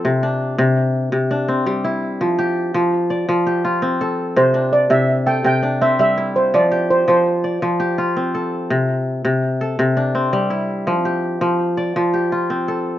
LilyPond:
<<
  \new Staff \with { instrumentName = "Steel pan" } { \time 12/8 \key c \major \tempo 4. = 111 r1. | r1. | c''4 d''8 e''4 g''8 g''4 e''8 e''4 c''8 | d''4 c''8 c''2 r2 r8 |
r1. | r1. | }
  \new Staff \with { instrumentName = "Kora" } { \time 12/8 \key c \major a'8 d'4. r4. d'8 c'4 e'4~ | e'8 g'4. r8 d''4 g'8 f'4 a'4~ | a'8 d'4. r8 a'4 d'8 c'4 e'4~ | e'8 g'4. r8 d''4 g'8 f'4 a'4~ |
a'8 r2 a'4 d'8 c'4 e'4~ | e'8 g'4. r8 d''4 g'8 f'4 a'4 | }
  \new Staff \with { instrumentName = "Kora" } { \clef bass \time 12/8 \key c \major c4 r8 c4 r8 c4 r8 g4 r8 | f4 r8 f4 r8 f4 r8 c'4 r8 | c4 r8 c4 r8 c4 r8 g4 r8 | f4 r8 f4 r8 f4 r8 c'4 r8 |
c4 r8 c4 r8 c4 r8 g4 r8 | f4 r8 f4 r8 f4 r8 c'4 r8 | }
>>